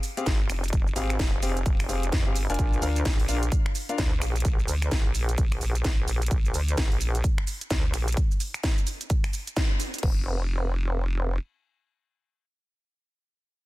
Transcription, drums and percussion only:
0.03 open hi-hat loud
0.03 shaker medium
0.17 closed hi-hat medium
0.17 shaker soft
0.26 kick loud
0.26 snare loud
0.26 closed hi-hat medium
0.26 shaker soft
0.50 finger snap medium
0.50 open hi-hat loud
0.50 shaker medium
0.64 closed hi-hat soft
0.64 shaker soft
0.68 closed hi-hat medium
0.73 kick loud
0.73 closed hi-hat medium
0.73 shaker soft
0.87 shaker soft
0.96 open hi-hat loud
0.96 shaker medium
1.10 finger snap medium
1.10 closed hi-hat soft
1.10 shaker soft
1.19 kick loud
1.19 snare loud
1.19 closed hi-hat medium
1.19 shaker soft
1.43 open hi-hat loud
1.43 shaker medium
1.57 closed hi-hat medium
1.57 shaker soft
1.66 kick loud
1.66 closed hi-hat medium
1.66 shaker soft
1.80 finger snap medium
1.80 open hi-hat medium
1.80 shaker soft
1.89 open hi-hat loud
1.89 shaker medium
2.03 closed hi-hat medium
2.03 shaker soft
2.12 kick loud
2.12 snare loud
2.12 closed hi-hat medium
2.12 shaker soft
2.36 open hi-hat loud
2.36 shaker medium
2.50 closed hi-hat soft
2.50 shaker soft
2.54 closed hi-hat medium
2.59 kick loud
2.59 closed hi-hat medium
2.59 shaker soft
2.73 shaker soft
2.82 open hi-hat loud
2.82 shaker medium
2.96 closed hi-hat medium
2.96 shaker soft
3.05 kick loud
3.05 snare loud
3.05 closed hi-hat medium
3.05 shaker soft
3.19 open hi-hat medium
3.29 open hi-hat loud
3.29 shaker medium
3.43 closed hi-hat medium
3.43 shaker soft
3.52 kick loud
3.52 closed hi-hat medium
3.52 shaker soft
3.66 finger snap medium
3.75 open hi-hat loud
3.75 shaker medium
3.89 closed hi-hat medium
3.89 shaker soft
3.98 kick loud
3.98 snare loud
3.98 closed hi-hat medium
3.98 shaker soft
4.22 finger snap medium
4.22 open hi-hat loud
4.22 shaker medium
4.36 closed hi-hat soft
4.36 shaker soft
4.40 closed hi-hat medium
4.45 kick loud
4.45 closed hi-hat medium
4.45 shaker soft
4.59 shaker soft
4.68 open hi-hat loud
4.68 shaker medium
4.82 finger snap medium
4.82 closed hi-hat medium
4.82 shaker soft
4.91 kick loud
4.91 snare loud
4.91 closed hi-hat medium
4.91 shaker soft
5.15 open hi-hat loud
5.15 shaker medium
5.29 closed hi-hat medium
5.29 shaker soft
5.38 kick loud
5.38 closed hi-hat medium
5.38 shaker soft
5.52 finger snap medium
5.52 open hi-hat medium
5.61 open hi-hat loud
5.61 shaker medium
5.75 closed hi-hat medium
5.75 shaker soft
5.84 kick loud
5.84 snare loud
5.84 closed hi-hat medium
5.84 shaker soft
6.08 open hi-hat loud
6.08 shaker medium
6.22 closed hi-hat medium
6.22 shaker soft
6.26 closed hi-hat medium
6.31 kick loud
6.31 closed hi-hat medium
6.31 shaker soft
6.45 shaker soft
6.54 open hi-hat loud
6.54 shaker medium
6.68 closed hi-hat medium
6.68 shaker soft
6.77 kick loud
6.77 snare loud
6.77 closed hi-hat medium
6.77 shaker soft
6.92 open hi-hat medium
7.01 open hi-hat loud
7.01 shaker medium
7.15 closed hi-hat medium
7.15 shaker soft
7.24 kick loud
7.24 closed hi-hat medium
7.24 shaker soft
7.38 finger snap medium
7.47 open hi-hat loud
7.47 shaker medium
7.61 closed hi-hat medium
7.61 shaker soft
7.70 kick loud
7.70 snare loud
7.70 closed hi-hat medium
7.70 shaker medium
7.94 finger snap medium
7.94 open hi-hat loud
7.94 shaker medium
8.08 closed hi-hat medium
8.08 shaker soft
8.12 closed hi-hat medium
8.17 kick loud
8.17 closed hi-hat medium
8.17 shaker soft
8.31 shaker soft
8.40 open hi-hat loud
8.40 shaker medium
8.54 finger snap medium
8.54 closed hi-hat medium
8.54 shaker soft
8.63 kick loud
8.63 snare loud
8.63 closed hi-hat medium
8.63 shaker soft
8.78 shaker soft
8.87 open hi-hat loud
8.87 shaker medium
9.01 closed hi-hat medium
9.01 shaker soft
9.10 kick loud
9.10 closed hi-hat medium
9.10 shaker soft
9.24 finger snap medium
9.24 open hi-hat medium
9.24 shaker soft
9.33 open hi-hat loud
9.33 shaker medium
9.47 closed hi-hat medium
9.47 shaker soft
9.56 kick loud
9.56 snare loud
9.56 closed hi-hat medium
9.56 shaker soft
9.80 open hi-hat loud
9.80 shaker medium
9.94 closed hi-hat medium
9.94 shaker soft
9.98 closed hi-hat medium
10.03 kick loud
10.03 crash medium

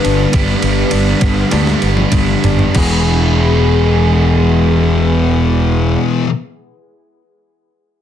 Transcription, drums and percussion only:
0.05 ride medium
0.33 kick loud
0.33 ride medium
0.62 ride medium
0.91 ride medium
1.21 kick medium
1.21 ride medium
1.51 snare medium
1.51 ride medium
1.67 snare medium
1.82 ride medium
1.97 high tom medium
2.12 kick medium
2.12 mid tom medium
2.12 ride medium
2.44 floor tom medium
2.44 ride medium
2.59 floor tom medium
2.75 kick loud
2.75 crash medium

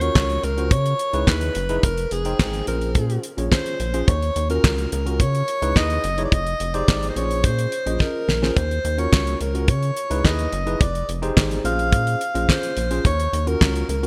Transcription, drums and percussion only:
0.01 closed hi-hat soft
0.15 kick loud
0.15 snare loud
0.15 clap medium
0.30 closed hi-hat soft
0.43 closed hi-hat medium
0.58 closed hi-hat soft
0.71 kick loud
0.71 closed hi-hat medium
0.86 closed hi-hat soft
0.99 closed hi-hat medium
1.13 closed hi-hat medium
1.27 kick medium
1.27 snare medium
1.27 clap medium
1.41 closed hi-hat soft
1.55 closed hi-hat medium
1.69 closed hi-hat soft
1.83 kick loud
1.83 closed hi-hat medium
1.97 closed hi-hat soft
2.11 closed hi-hat medium
2.25 closed hi-hat soft
2.39 kick loud
2.39 snare loud
2.39 clap medium
2.53 closed hi-hat medium
2.67 closed hi-hat medium
2.81 closed hi-hat soft
2.95 kick loud
2.95 closed hi-hat medium
3.10 closed hi-hat soft
3.23 closed hi-hat medium
3.38 closed hi-hat medium
3.52 kick medium
3.52 snare medium
3.52 clap medium
3.66 closed hi-hat soft
3.80 closed hi-hat medium
3.94 closed hi-hat soft
4.08 kick loud
4.08 closed hi-hat medium
4.22 closed hi-hat soft
4.36 closed hi-hat medium
4.50 closed hi-hat soft
4.64 kick loud
4.64 snare loud
4.64 clap medium
4.78 closed hi-hat soft
4.92 closed hi-hat medium
5.07 closed hi-hat soft
5.20 kick loud
5.20 closed hi-hat medium
5.35 closed hi-hat medium
5.48 closed hi-hat medium
5.62 closed hi-hat medium
5.76 kick medium
5.76 snare medium
5.76 clap medium
5.90 closed hi-hat soft
6.04 closed hi-hat medium
6.18 closed hi-hat medium
6.32 kick loud
6.32 closed hi-hat medium
6.47 closed hi-hat soft
6.60 closed hi-hat medium
6.74 closed hi-hat soft
6.88 kick loud
6.88 snare loud
6.88 clap medium
7.03 closed hi-hat soft
7.16 closed hi-hat medium
7.31 closed hi-hat soft
7.44 kick loud
7.44 closed hi-hat medium
7.59 closed hi-hat medium
7.72 closed hi-hat medium
7.87 closed hi-hat medium
8.00 kick medium
8.00 snare soft
8.29 snare medium
8.43 snare medium
8.57 kick loud
8.57 closed hi-hat medium
8.71 closed hi-hat soft
8.85 closed hi-hat medium
8.98 closed hi-hat soft
9.13 kick loud
9.13 snare loud
9.13 clap loud
9.27 closed hi-hat soft
9.41 closed hi-hat medium
9.55 closed hi-hat medium
9.68 kick loud
9.68 closed hi-hat medium
9.83 closed hi-hat soft
9.97 closed hi-hat medium
10.11 closed hi-hat medium
10.25 kick medium
10.25 snare medium
10.25 clap medium
10.39 closed hi-hat soft
10.53 closed hi-hat medium
10.67 closed hi-hat soft
10.81 kick loud
10.81 closed hi-hat medium
10.95 closed hi-hat soft
11.09 closed hi-hat medium
11.23 closed hi-hat soft
11.37 kick loud
11.37 snare loud
11.37 clap medium
11.51 closed hi-hat soft
11.65 closed hi-hat medium
11.79 closed hi-hat soft
11.92 kick loud
11.92 closed hi-hat medium
12.07 closed hi-hat medium
12.21 closed hi-hat medium
12.35 closed hi-hat medium
12.49 kick medium
12.49 snare medium
12.49 clap medium
12.63 closed hi-hat soft
12.77 closed hi-hat medium
12.91 closed hi-hat medium
13.05 kick loud
13.05 closed hi-hat medium
13.20 closed hi-hat soft
13.33 closed hi-hat medium
13.47 closed hi-hat soft
13.61 kick loud
13.61 snare loud
13.61 clap medium
13.76 closed hi-hat soft
13.89 closed hi-hat medium
14.03 closed hi-hat soft

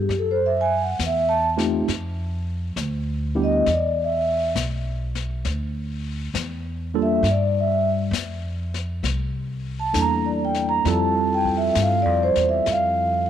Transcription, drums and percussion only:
0.10 brush sweep soft
0.10 snare soft
0.99 snare medium
0.99 hi-hat pedal soft
1.58 snare soft
1.88 brush sweep soft
1.88 snare soft
2.77 snare soft
2.77 hi-hat pedal soft
3.66 brush sweep medium
3.66 snare soft
4.56 snare medium
4.56 hi-hat pedal soft
5.15 snare soft
5.45 brush sweep soft
5.45 snare soft
6.35 snare medium
6.35 hi-hat pedal soft
7.24 brush sweep soft
7.24 snare soft
8.13 snare medium
8.13 hi-hat pedal medium
8.74 snare soft
9.04 brush sweep soft
9.04 snare soft
9.94 snare medium
9.94 hi-hat pedal soft
10.54 snare soft
10.85 brush sweep soft
10.85 snare soft
11.45 kick soft
11.75 snare medium
11.75 hi-hat pedal soft
12.36 snare soft
12.66 brush sweep soft
12.66 snare soft

